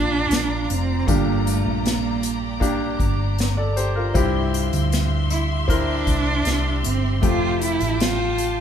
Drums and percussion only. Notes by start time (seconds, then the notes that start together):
0.31 snare, closed hi-hat
0.70 closed hi-hat
1.08 kick, closed hi-hat
1.47 closed hi-hat
1.86 snare, closed hi-hat
2.23 closed hi-hat
2.61 kick, closed hi-hat
3.00 kick, closed hi-hat
3.38 snare, closed hi-hat
3.77 closed hi-hat
4.15 kick, closed hi-hat
4.54 closed hi-hat
4.73 closed hi-hat
4.92 snare, closed hi-hat
5.30 closed hi-hat
5.69 kick, closed hi-hat
6.07 kick, closed hi-hat
6.45 snare, closed hi-hat
6.84 closed hi-hat
7.23 kick, closed hi-hat
7.61 closed hi-hat
7.80 closed hi-hat
8.00 snare, closed hi-hat
8.38 closed hi-hat